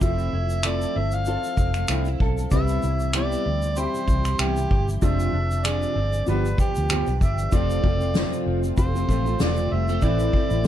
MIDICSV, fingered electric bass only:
0, 0, Header, 1, 3, 480
1, 0, Start_track
1, 0, Tempo, 625652
1, 9, Time_signature, 4, 2, 24, 8
1, 8188, End_track
2, 0, Start_track
2, 0, Title_t, "Fingered electric bass"
2, 0, Program_c, 0, 33
2, 10, Note_on_c, 0, 29, 96
2, 207, Note_off_c, 0, 29, 0
2, 254, Note_on_c, 0, 29, 76
2, 646, Note_off_c, 0, 29, 0
2, 737, Note_on_c, 0, 31, 72
2, 1039, Note_off_c, 0, 31, 0
2, 1207, Note_on_c, 0, 29, 84
2, 1405, Note_off_c, 0, 29, 0
2, 1449, Note_on_c, 0, 36, 84
2, 1646, Note_off_c, 0, 36, 0
2, 1690, Note_on_c, 0, 35, 76
2, 1887, Note_off_c, 0, 35, 0
2, 1930, Note_on_c, 0, 36, 110
2, 2127, Note_off_c, 0, 36, 0
2, 2175, Note_on_c, 0, 36, 76
2, 2567, Note_off_c, 0, 36, 0
2, 2654, Note_on_c, 0, 38, 62
2, 2958, Note_off_c, 0, 38, 0
2, 3125, Note_on_c, 0, 36, 85
2, 3324, Note_off_c, 0, 36, 0
2, 3369, Note_on_c, 0, 36, 69
2, 3567, Note_off_c, 0, 36, 0
2, 3614, Note_on_c, 0, 31, 75
2, 3810, Note_off_c, 0, 31, 0
2, 3851, Note_on_c, 0, 29, 103
2, 4048, Note_off_c, 0, 29, 0
2, 4088, Note_on_c, 0, 29, 77
2, 4483, Note_off_c, 0, 29, 0
2, 4570, Note_on_c, 0, 31, 83
2, 4767, Note_off_c, 0, 31, 0
2, 4814, Note_on_c, 0, 31, 96
2, 5010, Note_off_c, 0, 31, 0
2, 5194, Note_on_c, 0, 38, 72
2, 5386, Note_off_c, 0, 38, 0
2, 5426, Note_on_c, 0, 35, 68
2, 5533, Note_on_c, 0, 31, 66
2, 5544, Note_off_c, 0, 35, 0
2, 5729, Note_off_c, 0, 31, 0
2, 5773, Note_on_c, 0, 29, 100
2, 5970, Note_off_c, 0, 29, 0
2, 6013, Note_on_c, 0, 29, 77
2, 6318, Note_off_c, 0, 29, 0
2, 6493, Note_on_c, 0, 29, 78
2, 6689, Note_off_c, 0, 29, 0
2, 6732, Note_on_c, 0, 29, 86
2, 6929, Note_off_c, 0, 29, 0
2, 6970, Note_on_c, 0, 33, 90
2, 7167, Note_off_c, 0, 33, 0
2, 7218, Note_on_c, 0, 28, 80
2, 7412, Note_off_c, 0, 28, 0
2, 7458, Note_on_c, 0, 29, 79
2, 7652, Note_off_c, 0, 29, 0
2, 7689, Note_on_c, 0, 33, 93
2, 7886, Note_off_c, 0, 33, 0
2, 8062, Note_on_c, 0, 33, 96
2, 8188, Note_off_c, 0, 33, 0
2, 8188, End_track
3, 0, Start_track
3, 0, Title_t, "Muted fingered electric bass strokes"
3, 5051, Note_on_c, 9, 29, 43
3, 5127, Note_off_c, 9, 29, 0
3, 8188, End_track
0, 0, End_of_file